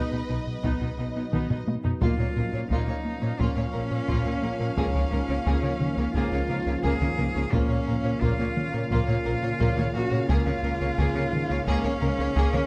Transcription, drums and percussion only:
0.64 taiko medium
1.33 taiko mid medium
1.50 taiko low-mid medium
1.68 taiko high medium
1.85 taiko low medium
2.02 taiko medium
2.71 taiko medium
3.40 taiko medium
4.09 taiko medium
4.78 taiko loud
5.47 taiko medium
5.81 taiko mid soft
6.15 taiko medium
6.84 taiko medium
7.02 taiko mid soft
7.53 taiko medium
8.22 taiko medium
8.57 taiko mid medium
8.92 taiko medium
9.61 taiko medium
9.78 taiko mid soft
10.29 taiko loud
10.98 taiko medium
11.33 taiko mid medium
11.67 taiko medium
12.37 taiko medium
12.54 taiko mid soft

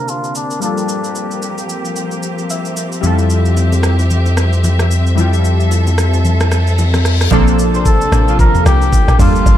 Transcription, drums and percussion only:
0.08 shaker medium
0.24 shaker soft
0.35 shaker medium
0.50 shaker soft
0.62 shaker medium
0.77 shaker soft
0.89 shaker medium
1.04 shaker medium
1.15 shaker medium
1.31 shaker soft
1.42 shaker medium
1.58 shaker medium
1.69 shaker medium
1.85 shaker soft
1.96 shaker medium
2.11 shaker soft
2.23 shaker medium
2.38 shaker soft
2.50 shaker medium
2.65 shaker soft
2.77 shaker medium
2.92 shaker medium
3.03 low conga medium
3.03 shaker medium
3.18 low bongo soft
3.18 shaker medium
3.30 shaker medium
3.45 shaker soft
3.57 high bongo medium
3.57 shaker medium
3.72 low bongo medium
3.72 shaker medium
3.83 cross-stick medium
3.83 shaker medium
3.99 high bongo soft
3.99 shaker medium
4.10 low conga medium
4.10 shaker medium
4.26 high bongo medium
4.26 shaker soft
4.37 cross-stick medium
4.37 low bongo medium
4.37 shaker medium
4.53 shaker soft
4.64 high bongo medium
4.64 low conga medium
4.64 shaker medium
4.79 cross-stick medium
4.79 low bongo medium
4.79 shaker soft
4.91 shaker medium
5.07 shaker medium
5.18 low conga medium
5.18 shaker medium
5.33 low bongo soft
5.33 shaker medium
5.45 shaker medium
5.60 shaker soft
5.71 high bongo medium
5.71 shaker medium
5.87 low bongo medium
5.87 shaker medium
5.98 cross-stick medium
5.98 shaker medium
6.14 high bongo soft
6.14 shaker medium
6.25 low conga medium
6.25 shaker medium
6.40 cross-stick medium
6.40 high bongo soft
6.40 shaker soft
6.52 cross-stick medium
6.52 low bongo medium
6.52 shaker medium
6.67 shaker soft
6.78 high bongo medium
6.78 low conga medium
6.78 shaker medium
6.94 cross-stick medium
6.94 low bongo medium
6.94 shaker soft
7.05 cross-stick medium
7.05 shaker medium
7.21 cross-stick medium
7.21 shaker medium
7.32 kick loud
7.32 shaker medium
7.47 shaker medium
7.59 shaker loud
7.74 shaker medium
7.85 kick loud
7.85 shaker medium
8.01 shaker medium
8.12 cross-stick loud
8.12 shaker medium
8.28 shaker medium
8.39 kick loud
8.39 shaker medium
8.55 mid tom medium
8.55 shaker soft
8.66 cross-stick loud
8.66 shaker medium
8.82 shaker soft
8.93 kick loud
8.93 shaker medium
9.08 cross-stick medium
9.08 shaker medium
9.19 kick loud
9.19 mid tom medium
9.19 open hi-hat medium
9.19 shaker medium
9.35 shaker medium
9.46 kick loud
9.46 shaker medium

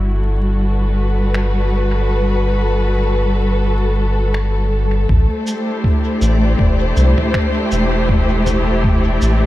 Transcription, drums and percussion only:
1.34 finger snap medium
4.34 finger snap medium
5.09 kick loud
5.47 cabasa medium
5.84 kick loud
6.22 cabasa medium
6.59 kick loud
6.97 cabasa medium
7.18 mid tom medium
7.34 finger snap medium
7.34 kick loud
7.72 cabasa medium
8.09 kick loud
8.47 mid tom medium
8.47 cabasa medium
8.84 kick loud
9.22 cabasa medium

